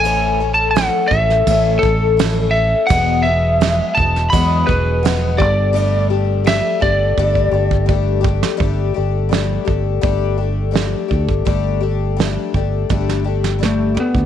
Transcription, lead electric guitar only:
0.00 0.54 G#5 loud
0.54 0.70 A5 medium
0.71 1.10 F#5 loud
1.08 1.83 E5 loud
1.79 2.55 A4 loud
2.51 2.90 E5 loud
2.87 3.25 F#5 loud
3.23 3.98 E5 loud
3.95 4.33 A5 loud
4.30 4.68 B5 loud
4.67 5.41 B4 loud
5.38 6.07 D5 loud
6.47 6.82 E5 loud
6.82 8.21 D5 medium
13.65 13.97 A3 medium
14.00 14.26 B3 medium

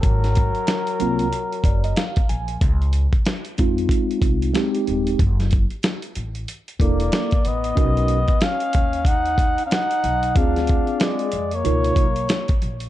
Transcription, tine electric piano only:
1.00 1.25 F#3 medium
1.00 1.25 A#3 medium
1.00 1.25 C4 medium
1.00 1.26 F4 medium
1.65 1.83 D5 medium
1.84 1.96 D#5 medium
1.97 2.27 F5 medium
2.29 2.59 G#5 medium
3.58 4.50 G#3 medium
3.58 4.50 C4 medium
3.58 4.50 D#4 medium
3.58 4.51 F4 medium
4.53 5.19 G#3 medium
4.53 5.19 C4 medium
4.53 5.19 D#4 medium
4.53 5.20 G4 loud
6.79 7.28 A#3 medium
6.79 7.28 D4 medium
6.79 7.29 E4 medium
6.79 7.29 A4 medium
7.75 8.17 C#4 medium
7.75 8.17 D#4 medium
7.75 8.17 F#4 medium
7.75 8.18 A#4 medium
10.35 11.27 C4 medium
10.35 11.27 D4 medium
10.35 11.28 F4 medium
10.35 11.28 G#4 medium
11.64 12.05 B2 medium
11.64 12.05 D#4 medium
11.64 12.05 F4 medium
11.64 12.05 A#4 medium

